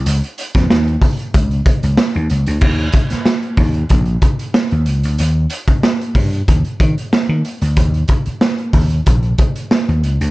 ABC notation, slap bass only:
X:1
M:4/4
L:1/16
Q:1/4=93
K:Dblyd
V:1 name="Slap bass" clef=bass
D,, z2 F,, E,,2 z2 D,,2 z D,, z E,, D,, =D,, | E,,2 z4 E,,2 B,,,2 z3 E,, D,, =D,, | E,,2 z4 G,,2 E,, z E, z2 E, z =D,, | E,,2 z4 E,,2 B,,,2 z3 E,, D,, =D,, |]